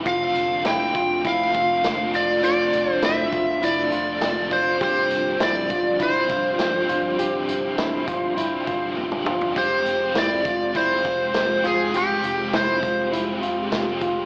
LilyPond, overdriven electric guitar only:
\new Staff \with { instrumentName = "Overdriven electric guitar" } { \time 4/4 \key f \lydian \tempo 4 = 101 <f c' d' a'>8 <c' d' a'>4. <f c' d' a'>4 <f c' d' a'>4 | <f c' d' a'>8 <c' d' a'>4. <f c' d' a'>4 <f c' d' a'>4 | <g, d f c' d' g'>2 <f c' d' g'>4 <f c' d' g'>4 | <g, d f c' d' g'>8 <f c' d' g'>4. <f c' d' g'>4 <f c' d' g'>4 |
<f aes c' f' g'>8 <c' f' g'>4. <aes c' f' g'>4 <aes c' f' g'>4 | <f aes c' f' g'>2 <aes c' f' g'>4 <aes c' f' g'>4 | }